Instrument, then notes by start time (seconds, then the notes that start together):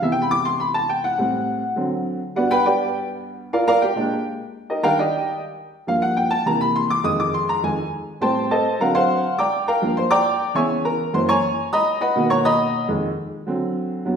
upright piano
0.02 C3 E3 B3 E5
0.12 G5
0.22 B5
0.31 D6
0.45 C6
0.60 B5
0.74 A5
0.90 G5
1.04 F#5
1.18 A2 G3 C4
1.76 D3 F#3 C4
2.36 G2 G3 B3 F#4 B4 D5 F#5
2.51 B4 F#5 G5 B5
2.66 G4 B4 D5 G5
3.53 F4 A#4 D5 F5
3.68 A#4 D5 F5 A#5
3.82 G4 G5
3.96 A#2 G#3 D4
4.70 D#4 G4 A#4 D#5
4.83 D#3 G3 D4 A#4 F5 G5 A#5
4.99 G4 D5 D#5 G5
5.87 G2 F3 A#3 F5
6.02 F#5
6.17 G5
6.31 A5
6.46 C3 E3 A#3 A#5
6.61 B5
6.76 C6
6.90 D6
7.04 F2 D#3 G#3 D#6
7.20 D6
7.34 C6
7.49 A#5
7.63 F2 D#3 G#3 G#5
8.21 A2 G3 C4 C5 G5 A5 C6
8.51 A4 C5 D#5 A5
8.80 D3 F#3 C4 A#4 F5 F#5 A#5
8.95 C5 F5 F#5 C6
9.39 D5 G5 A#5 D6
9.68 A#4 F5 G5 A#5
9.82 G2 F3 A#3
9.97 C5 C6
10.11 D5 G5 A#5 D6
10.55 C#3 E3 B3 C#5 E5 G#5 C#6
10.85 A#4 A#5
11.13 F#2 E3 A#3 C5 C6
11.29 C#5 G#5 A#5 C#6
11.73 D#5 A#5 B5 D#6
12.01 B4 D#5 F#5 B5
12.16 B2 D#3 A#3
12.30 C#5 F#5 A#5 C#6
12.45 D#5 A#5 B5 D#6
12.88 F2 D#3 G#3
13.47 D3 F#3 C4
14.05 G2 F#3 B3